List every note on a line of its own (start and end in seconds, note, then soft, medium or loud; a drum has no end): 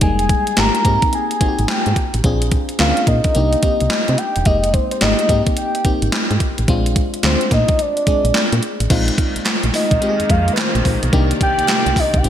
0.01 0.35 F1 loud
0.01 0.46 G3 medium
0.01 0.45 A#3 medium
0.01 0.46 D#4 medium
0.01 0.61 G#5 loud
0.01 kick loud
0.01 closed hi-hat medium
0.07 0.48 G#3 medium
0.19 closed hi-hat medium
0.29 kick medium
0.29 closed hi-hat medium
0.47 closed hi-hat medium
0.57 0.71 G#1 medium
0.57 0.85 G#3 medium
0.57 0.83 A#3 medium
0.57 0.85 D#4 medium
0.57 0.85 G4 medium
0.57 1.14 A#5 loud
0.57 snare loud
0.57 clap medium
0.57 closed hi-hat medium
0.75 closed hi-hat medium
0.85 0.98 G#2 medium
0.85 1.32 A#3 medium
0.85 1.33 C4 medium
0.85 1.33 D#4 medium
0.85 1.33 G4 medium
0.85 kick medium
0.85 closed hi-hat medium
1.02 kick medium
1.02 closed hi-hat medium
1.13 1.72 G#5 loud
1.13 closed hi-hat medium
1.31 closed hi-hat soft
1.41 1.48 G#1 soft
1.41 2.03 A#3 medium
1.41 2.03 C4 medium
1.41 2.03 D#4 medium
1.41 1.49 F#4 medium
1.41 kick loud
1.41 closed hi-hat medium
1.48 2.07 G4 medium
1.59 1.66 G#1 medium
1.59 closed hi-hat soft
1.68 2.15 G5 medium
1.68 snare loud
1.68 clap medium
1.68 closed hi-hat medium
1.86 1.94 G#2 loud
1.86 closed hi-hat medium
1.96 kick medium
1.96 closed hi-hat medium
2.14 2.22 A1 medium
2.14 closed hi-hat medium
2.24 2.57 A#1 loud
2.24 2.68 C4 medium
2.24 2.68 D4 medium
2.24 2.68 F4 medium
2.24 2.69 G#4 medium
2.24 kick loud
2.24 closed hi-hat medium
2.42 closed hi-hat medium
2.51 kick loud
2.51 closed hi-hat medium
2.69 closed hi-hat soft
2.79 2.93 D2 loud
2.79 3.35 C4 medium
2.79 2.88 C#4 medium
2.79 3.35 F4 medium
2.79 3.36 A#4 medium
2.79 3.06 F5 loud
2.79 snare loud
2.79 clap loud
2.79 closed hi-hat medium
2.86 3.34 D4 medium
2.97 closed hi-hat medium
3.07 3.20 A#2 loud
3.07 4.20 D#5 loud
3.07 kick medium
3.07 closed hi-hat medium
3.24 kick medium
3.24 closed hi-hat medium
3.35 3.56 C2 loud
3.35 3.59 A#3 medium
3.35 3.59 D4 medium
3.35 3.59 D#4 medium
3.35 3.59 G4 medium
3.35 closed hi-hat medium
3.53 closed hi-hat soft
3.63 3.70 C2 soft
3.63 4.25 A#3 medium
3.63 4.25 C4 medium
3.63 4.25 D#4 medium
3.63 4.26 G4 medium
3.63 kick loud
3.63 closed hi-hat medium
3.80 3.89 C2 medium
3.80 closed hi-hat soft
3.90 snare loud
3.90 clap medium
3.90 closed hi-hat medium
4.08 4.16 C3 loud
4.08 closed hi-hat medium
4.18 4.47 G5 loud
4.18 closed hi-hat medium
4.36 4.44 E1 medium
4.36 closed hi-hat medium
4.45 4.79 F1 loud
4.45 4.90 G#3 medium
4.45 4.90 A#3 medium
4.45 4.90 D#4 medium
4.45 4.90 G4 medium
4.45 4.75 D#5 loud
4.45 kick loud
4.45 closed hi-hat medium
4.64 closed hi-hat medium
4.73 4.91 C5 loud
4.73 kick loud
4.73 closed hi-hat medium
4.91 5.03 C5 medium
4.91 closed hi-hat medium
5.01 5.15 G#1 medium
5.01 5.29 G#3 medium
5.01 5.28 A#3 medium
5.01 5.28 D#4 medium
5.01 5.29 G4 medium
5.01 5.29 D#5 loud
5.01 snare loud
5.01 clap loud
5.01 closed hi-hat medium
5.19 closed hi-hat medium
5.29 5.42 G#2 medium
5.29 5.77 A#3 medium
5.29 5.77 C4 medium
5.29 5.77 D#4 medium
5.29 5.77 G4 medium
5.29 5.42 D#5 loud
5.29 kick medium
5.29 closed hi-hat medium
5.46 kick medium
5.46 closed hi-hat medium
5.57 6.09 G5 medium
5.57 closed hi-hat medium
5.75 closed hi-hat soft
5.85 5.92 G#1 soft
5.85 6.47 A#3 medium
5.85 6.47 C4 medium
5.85 6.47 D#4 medium
5.85 6.48 G4 medium
5.85 kick loud
5.85 closed hi-hat medium
6.02 6.10 G#1 medium
6.02 closed hi-hat medium
6.12 snare loud
6.12 clap medium
6.12 closed hi-hat medium
6.31 6.38 G#2 loud
6.31 closed hi-hat medium
6.40 kick medium
6.40 closed hi-hat medium
6.58 6.66 A1 medium
6.58 closed hi-hat medium
6.68 7.02 A#1 loud
6.68 7.12 G#3 medium
6.68 7.12 C4 medium
6.68 7.13 D4 medium
6.68 7.13 F4 loud
6.68 kick loud
6.68 closed hi-hat medium
6.86 closed hi-hat medium
6.96 kick loud
6.96 closed hi-hat medium
7.14 closed hi-hat medium
7.23 7.37 D2 medium
7.23 7.86 G#3 medium
7.23 7.86 C4 medium
7.23 7.86 D4 medium
7.23 7.87 F4 medium
7.23 7.51 C5 loud
7.23 snare loud
7.23 clap loud
7.23 closed hi-hat medium
7.41 closed hi-hat medium
7.51 7.64 A#2 loud
7.51 7.83 D#5 loud
7.51 kick medium
7.51 snare medium
7.51 closed hi-hat medium
7.68 kick loud
7.68 closed hi-hat medium
7.79 8.64 D5 loud
7.79 closed hi-hat medium
7.97 closed hi-hat soft
8.07 8.14 A#1 soft
8.07 8.69 G#3 medium
8.07 8.69 C4 medium
8.07 8.69 D4 medium
8.07 8.70 G#4 medium
8.07 kick medium
8.07 closed hi-hat medium
8.25 8.32 A#1 medium
8.25 closed hi-hat medium
8.34 snare loud
8.34 clap medium
8.34 closed hi-hat medium
8.52 8.60 A#2 loud
8.52 closed hi-hat medium
8.63 closed hi-hat medium
8.80 8.88 A1 medium
8.80 closed hi-hat medium
8.90 9.11 A#1 loud
8.90 12.20 D#3 medium
8.90 9.72 G#3 medium
8.90 11.10 G#3 medium
8.90 12.20 A#3 medium
8.90 9.72 C4 medium
8.90 9.72 D#4 medium
8.90 9.72 F4 loud
8.90 kick loud
8.90 closed hi-hat medium
8.90 crash medium
9.08 closed hi-hat medium
9.18 kick loud
9.18 closed hi-hat medium
9.36 9.40 A#1 soft
9.36 closed hi-hat medium
9.46 snare loud
9.46 clap medium
9.46 clap loud
9.46 closed hi-hat medium
9.63 9.71 A#1 medium
9.63 closed hi-hat medium
9.74 10.32 D#5 loud
9.74 snare medium
9.74 open hi-hat medium
9.91 9.99 A#1 medium
9.91 kick loud
9.91 closed hi-hat medium
10.01 10.83 G#3 medium
10.01 10.83 C4 medium
10.01 10.84 D#4 medium
10.01 10.10 G4 medium
10.01 closed hi-hat medium
10.09 10.87 G#4 medium
10.20 10.24 F2 soft
10.20 closed hi-hat soft
10.30 10.50 F2 loud
10.30 10.53 F5 loud
10.30 kick loud
10.30 closed hi-hat medium
10.48 closed hi-hat medium
10.53 10.60 B4 medium
10.53 clap loud
10.57 11.03 C5 medium
10.57 snare loud
10.57 clap medium
10.57 closed hi-hat medium
10.75 10.83 A#1 loud
10.75 closed hi-hat medium
10.85 10.98 A#1 medium
10.85 kick medium
10.85 open hi-hat medium
11.03 11.11 B1 medium
11.03 closed hi-hat medium
11.13 11.33 C2 loud
11.13 12.23 C3 medium
11.13 11.94 A#3 medium
11.13 11.95 D4 medium
11.13 11.95 D#4 medium
11.13 11.95 G4 loud
11.13 12.23 D5 medium
11.13 kick loud
11.13 closed hi-hat medium
11.31 closed hi-hat medium
11.41 12.01 G5 loud
11.41 kick loud
11.41 closed hi-hat medium
11.59 11.63 C2 soft
11.59 closed hi-hat medium
11.68 snare loud
11.68 clap medium
11.68 clap loud
11.68 closed hi-hat medium
11.86 11.94 C2 medium
11.86 closed hi-hat soft
11.96 12.18 D#5 loud
11.96 kick medium
11.96 open hi-hat medium
12.14 12.21 C2 loud
12.14 12.29 G5 loud
12.14 kick loud
12.14 closed hi-hat medium
12.23 12.29 G#1 loud
12.23 12.29 D#3 medium
12.23 12.29 A#3 medium
12.23 12.29 C4 medium
12.23 12.29 D#4 medium
12.23 12.29 F4 medium
12.23 12.29 G4 medium
12.23 closed hi-hat medium